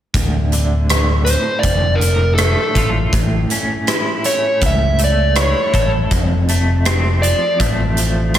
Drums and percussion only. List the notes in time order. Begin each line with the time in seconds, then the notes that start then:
0.14 kick, closed hi-hat
0.52 closed hi-hat
0.89 cross-stick, closed hi-hat
1.26 closed hi-hat
1.63 kick, closed hi-hat
2.01 closed hi-hat
2.38 cross-stick, closed hi-hat
2.75 kick, closed hi-hat
3.13 kick, closed hi-hat
3.50 closed hi-hat
3.87 cross-stick, closed hi-hat
4.24 closed hi-hat
4.61 kick, closed hi-hat
4.98 closed hi-hat
5.35 cross-stick, closed hi-hat
5.74 kick, closed hi-hat
6.11 kick, closed hi-hat
6.48 closed hi-hat
6.85 cross-stick, closed hi-hat
7.23 closed hi-hat
7.60 kick, closed hi-hat
7.97 closed hi-hat
8.34 cross-stick, closed hi-hat